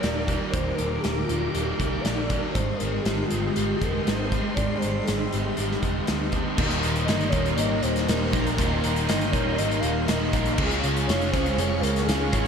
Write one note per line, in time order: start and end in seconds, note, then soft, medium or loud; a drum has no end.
0.00 0.37 D#1 medium
0.00 0.29 D#3 medium
0.00 1.03 D#3 medium
0.00 0.27 G3 medium
0.00 0.78 G3 medium
0.00 1.04 A#3 medium
0.00 0.27 D#4 medium
0.00 2.52 D#4 medium
0.00 2.53 A#4 medium
0.00 0.39 D5 loud
0.00 2.52 G5 medium
0.00 2.52 D6 medium
0.00 snare loud
0.00 closed hi-hat medium
0.27 1.56 G3 medium
0.27 1.54 D#4 medium
0.27 kick medium
0.27 closed hi-hat medium
0.51 0.71 D#1 medium
0.51 1.80 D#2 medium
0.51 0.76 C5 loud
0.51 kick loud
0.51 closed hi-hat medium
0.74 1.30 G3 medium
0.74 1.02 A#4 loud
0.78 0.96 D#1 medium
0.78 2.05 A#2 medium
0.78 closed hi-hat medium
1.00 2.05 D#3 medium
1.00 1.26 G4 loud
1.00 closed hi-hat medium
1.05 1.22 D#1 medium
1.05 snare loud
1.24 1.51 F4 medium
1.29 1.46 D#1 medium
1.29 2.04 G3 medium
1.29 1.80 A#3 medium
1.29 closed hi-hat medium
1.49 2.02 G4 loud
1.55 1.72 D#1 medium
1.55 2.31 G3 medium
1.55 2.31 D#4 medium
1.55 closed hi-hat medium
1.80 1.97 C2 medium
1.80 2.56 A#3 medium
1.80 kick medium
1.80 closed hi-hat medium
2.00 2.40 D5 medium
2.05 2.39 A#1 medium
2.05 2.56 D#3 medium
2.05 2.59 G3 medium
2.05 snare loud
2.05 closed hi-hat medium
2.30 2.59 G3 medium
2.30 3.57 D#4 medium
2.30 kick medium
2.30 closed hi-hat medium
2.52 2.72 G#1 medium
2.52 3.82 G#2 medium
2.52 6.54 G#3 medium
2.52 2.79 C5 loud
2.52 6.54 D#5 medium
2.52 6.54 G5 medium
2.52 kick loud
2.52 closed hi-hat medium
2.56 6.54 C6 loud
2.77 3.05 D#3 medium
2.77 3.03 A#4 medium
2.77 closed hi-hat medium
2.81 2.98 G#1 medium
2.81 3.32 G#3 medium
3.01 3.29 G4 medium
3.05 3.22 G#1 medium
3.05 4.07 D#3 medium
3.05 snare loud
3.05 closed hi-hat medium
3.27 3.51 F4 medium
3.27 closed hi-hat medium
3.32 3.49 G#1 medium
3.32 4.07 G#3 medium
3.32 3.83 C4 medium
3.52 3.78 G4 medium
3.56 3.74 G#1 medium
3.56 4.33 G#3 medium
3.56 4.31 D#4 medium
3.56 closed hi-hat medium
3.77 4.04 A#4 medium
3.81 3.98 F1 medium
3.81 5.08 C4 medium
3.81 kick medium
3.81 closed hi-hat medium
4.03 4.42 C5 medium
4.07 4.41 G#1 medium
4.07 4.82 D#3 medium
4.07 4.82 G#3 medium
4.07 snare loud
4.07 closed hi-hat medium
4.32 5.58 G#3 medium
4.32 5.57 D#4 medium
4.32 kick medium
4.32 closed hi-hat medium
4.55 4.74 G#1 medium
4.55 4.79 D5 loud
4.55 kick loud
4.55 closed hi-hat medium
4.60 5.84 G#2 medium
4.78 5.06 C5 medium
4.82 5.00 G#1 medium
4.82 5.08 D#3 medium
4.82 5.32 G#3 medium
4.82 closed hi-hat medium
5.04 5.34 G#4 medium
5.04 closed hi-hat medium
5.08 5.25 G#1 medium
5.08 6.08 D#3 medium
5.08 snare loud
5.32 5.50 G#1 medium
5.32 6.07 G#3 medium
5.32 5.84 C4 medium
5.32 6.08 G4 medium
5.32 closed hi-hat medium
5.57 5.75 G#1 medium
5.57 6.32 G#3 medium
5.57 6.33 D#4 medium
5.57 closed hi-hat medium
5.71 snare soft
5.83 6.00 F1 medium
5.83 6.59 C4 medium
5.83 kick medium
5.83 closed hi-hat medium
6.07 6.42 D2 medium
6.07 6.58 D#3 medium
6.07 6.58 G#3 medium
6.07 snare loud
6.07 closed hi-hat medium
6.32 6.58 G#3 medium
6.32 6.59 D#4 medium
6.32 kick medium
6.32 closed hi-hat medium
6.56 6.82 D#1 loud
6.56 8.58 D#2 medium
6.56 7.08 A#2 medium
6.56 6.86 D#3 medium
6.56 6.85 G3 loud
6.56 10.53 A#4 medium
6.56 10.54 D#5 medium
6.56 10.54 G5 medium
6.56 10.54 C6 loud
6.56 kick loud
6.56 crash loud
6.60 6.84 A#3 loud
6.60 6.82 D#4 loud
6.71 closed hi-hat soft
6.83 7.07 D#1 medium
6.83 7.08 D#3 medium
6.83 7.09 G3 medium
6.83 7.10 A#3 medium
6.83 7.11 D#4 medium
6.83 closed hi-hat medium
6.96 closed hi-hat medium
7.05 7.32 G1 medium
7.05 7.37 D#3 medium
7.05 7.31 D#5 loud
7.05 closed hi-hat medium
7.09 7.36 G3 medium
7.09 7.35 A#3 medium
7.09 7.34 D#4 medium
7.09 snare loud
7.21 closed hi-hat soft
7.29 7.56 D#1 medium
7.29 7.58 C#5 loud
7.29 kick medium
7.29 closed hi-hat medium
7.34 8.07 D#3 medium
7.34 8.08 G3 medium
7.34 8.10 A#3 medium
7.34 8.10 D#4 medium
7.46 closed hi-hat soft
7.56 7.81 G#1 medium
7.56 8.33 D#2 loud
7.56 8.34 A#2 medium
7.56 8.06 D#3 loud
7.56 8.07 G3 loud
7.56 8.08 A#3 loud
7.56 8.08 D#4 loud
7.56 7.83 D#5 loud
7.56 closed hi-hat loud
7.81 8.07 D#1 medium
7.81 8.10 C5 loud
7.81 closed hi-hat medium
7.96 snare soft
7.96 closed hi-hat soft
8.08 8.32 D#1 loud
8.08 8.35 D#3 medium
8.08 8.34 G3 medium
8.08 8.34 A#3 medium
8.08 8.32 D#4 medium
8.08 8.46 A#4 medium
8.08 snare loud
8.08 closed hi-hat loud
8.33 8.57 A#1 medium
8.33 8.56 D#2 medium
8.33 8.58 A#2 medium
8.33 8.59 D#3 medium
8.33 8.59 G3 medium
8.33 8.60 A#3 medium
8.33 8.60 D#4 medium
8.33 kick loud
8.33 closed hi-hat medium
8.47 closed hi-hat soft
8.58 8.82 D#1 loud
8.58 9.08 D#2 medium
8.58 9.09 A#2 medium
8.58 8.86 D#3 loud
8.58 8.85 G3 loud
8.58 8.83 A#3 loud
8.58 8.83 D#4 loud
8.58 kick loud
8.58 closed hi-hat loud
8.84 9.07 D#1 medium
8.84 9.06 D#3 medium
8.84 9.08 G3 medium
8.84 9.09 A#3 medium
8.84 9.09 D#4 medium
8.84 closed hi-hat medium
8.96 closed hi-hat soft
9.07 9.32 G1 medium
9.07 9.34 D#3 medium
9.07 9.33 G3 medium
9.07 9.32 A#3 medium
9.07 9.31 D#4 medium
9.07 9.33 D#5 loud
9.07 snare loud
9.07 closed hi-hat loud
9.21 closed hi-hat medium
9.31 9.57 D#1 medium
9.31 10.08 G3 medium
9.31 10.09 A#3 medium
9.31 10.10 D#4 medium
9.31 9.58 C#5 medium
9.31 kick loud
9.31 closed hi-hat medium
9.35 10.07 D#3 medium
9.57 9.82 G#1 medium
9.57 10.33 D#2 medium
9.57 10.33 A#2 loud
9.57 10.05 D#3 loud
9.57 10.07 G3 medium
9.57 10.07 A#3 loud
9.57 10.08 D#4 loud
9.57 9.81 D#5 loud
9.57 closed hi-hat loud
9.71 closed hi-hat soft
9.80 10.07 D#1 medium
9.80 10.08 F5 loud
9.80 closed hi-hat medium
10.07 10.32 D#1 medium
10.07 10.35 D#3 medium
10.07 10.34 G3 medium
10.07 10.33 A#3 medium
10.07 10.45 D#5 loud
10.07 snare loud
10.07 closed hi-hat loud
10.11 10.33 D#4 medium
10.33 10.57 A#1 loud
10.33 10.59 D#2 medium
10.33 10.57 A#2 medium
10.33 10.59 D#3 medium
10.33 10.58 G3 medium
10.33 10.58 A#3 medium
10.33 10.57 D#4 medium
10.33 kick loud
10.33 closed hi-hat medium
10.46 closed hi-hat medium
10.57 10.82 C#2 medium
10.57 11.09 C#3 medium
10.57 11.10 G#3 medium
10.57 10.87 C#4 medium
10.57 12.47 G#4 medium
10.57 12.47 C#5 medium
10.57 12.47 F5 medium
10.57 12.47 C#6 loud
10.57 kick loud
10.57 crash loud
10.62 10.86 F4 loud
10.62 10.84 G#4 loud
10.71 closed hi-hat medium
10.84 11.07 C#2 medium
10.84 11.11 F4 medium
10.84 11.12 G#4 medium
10.84 closed hi-hat medium
10.88 11.10 C#4 medium
10.97 closed hi-hat medium
11.07 11.32 F1 medium
11.07 12.08 G#3 medium
11.07 11.32 C#5 loud
11.07 snare loud
11.07 closed hi-hat loud
11.12 11.37 C#4 medium
11.12 11.34 F4 medium
11.12 11.34 G#4 medium
11.22 closed hi-hat soft
11.31 11.57 C#2 medium
11.31 12.10 G#4 medium
11.31 11.57 C5 loud
11.31 kick loud
11.31 closed hi-hat medium
11.36 12.09 C#4 medium
11.36 12.10 F4 medium
11.46 closed hi-hat soft
11.57 11.82 F1 medium
11.57 12.33 C#3 loud
11.57 12.05 G#3 loud
11.57 12.06 C#4 medium
11.57 12.07 F4 loud
11.57 12.08 G#4 loud
11.57 11.82 C#5 loud
11.57 closed hi-hat medium
11.81 12.06 C#2 medium
11.81 12.06 A#4 loud
11.81 closed hi-hat medium
11.96 snare soft
11.96 closed hi-hat medium
12.05 12.31 C#2 medium
12.05 12.47 G#3 medium
12.05 12.44 G#4 medium
12.09 12.35 C#4 medium
12.09 12.34 F4 medium
12.09 12.32 G#4 medium
12.09 snare loud
12.09 closed hi-hat loud
12.33 12.47 G#1 medium
12.33 12.47 C#3 medium
12.33 12.47 G#3 medium
12.33 12.47 C#4 medium
12.33 12.47 F4 medium
12.33 12.47 G#4 medium
12.33 kick loud
12.33 closed hi-hat medium